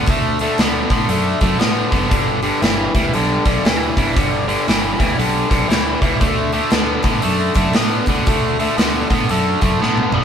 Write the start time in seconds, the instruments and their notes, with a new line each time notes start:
0.06 picked electric bass D2, overdriven electric guitar D3 A3, kick, open hi-hat
0.39 overdriven electric guitar D3 A3, open hi-hat
0.58 picked electric bass D2, overdriven electric guitar D3 B3, snare, open hi-hat
0.90 picked electric bass A2, overdriven electric guitar D3 B3, kick, open hi-hat
1.08 picked electric bass F#2, overdriven electric guitar D3 A3, open hi-hat
1.41 picked electric bass F#2, overdriven electric guitar D3 A3, kick, open hi-hat
1.60 picked electric bass A2, overdriven electric guitar D3 B3, snare, open hi-hat
1.91 picked electric bass F#1, overdriven electric guitar D3 B3, kick, open hi-hat
2.10 picked electric bass G1, overdriven electric guitar G2 D3, kick, open hi-hat
2.42 overdriven electric guitar G2 D3, open hi-hat
2.62 picked electric bass G1, overdriven electric guitar G2 E3, snare, open hi-hat
2.95 picked electric bass D2, overdriven electric guitar G2 E3, kick, open hi-hat
3.13 picked electric bass B1, overdriven electric guitar G2 D3, open hi-hat
3.45 picked electric bass B1, overdriven electric guitar G2 D3, kick, open hi-hat
3.65 picked electric bass D2, overdriven electric guitar G2 E3, snare, open hi-hat
3.97 picked electric bass G1, overdriven electric guitar G2 E3, kick, open hi-hat
4.16 picked electric bass G1, overdriven electric guitar G2 D3, kick, open hi-hat
4.48 overdriven electric guitar G2 D3, open hi-hat
4.68 picked electric bass G1, overdriven electric guitar G2 E3, snare, open hi-hat
4.99 picked electric bass D2, overdriven electric guitar G2 E3, kick, open hi-hat
5.18 picked electric bass B1, overdriven electric guitar G2 D3, open hi-hat
5.49 picked electric bass B1, overdriven electric guitar G2 D3, kick, open hi-hat
5.69 picked electric bass D2, overdriven electric guitar G2 E3, snare, open hi-hat
6.01 picked electric bass C#2, overdriven electric guitar G2 E3, kick, open hi-hat
6.20 picked electric bass D2, overdriven electric guitar D3 A3, kick, open hi-hat
6.52 overdriven electric guitar D3 A3, open hi-hat
6.70 picked electric bass D2, overdriven electric guitar D3 B3, snare, open hi-hat
7.03 picked electric bass A2, overdriven electric guitar D3 B3, kick, open hi-hat
7.22 picked electric bass F#2, overdriven electric guitar D3 A3, open hi-hat
7.54 picked electric bass F#2, overdriven electric guitar D3 A3, kick, open hi-hat
7.73 picked electric bass A2, overdriven electric guitar D3 B3, snare, open hi-hat
8.06 picked electric bass D2, overdriven electric guitar D3 B3, kick, open hi-hat
8.26 picked electric bass D2, overdriven electric guitar D3 A3, kick, open hi-hat
8.59 overdriven electric guitar D3 A3, open hi-hat
8.78 picked electric bass D2, overdriven electric guitar D3 B3, snare, open hi-hat
9.10 picked electric bass A2, overdriven electric guitar D3 B3, kick, open hi-hat
9.29 picked electric bass F#2, overdriven electric guitar D3 A3, open hi-hat
9.61 picked electric bass F#2, overdriven electric guitar D3 A3, kick, open hi-hat
9.80 picked electric bass A2, overdriven electric guitar D3 B3, snare
9.97 high tom
10.12 picked electric bass G1, overdriven electric guitar D3 B3, mid tom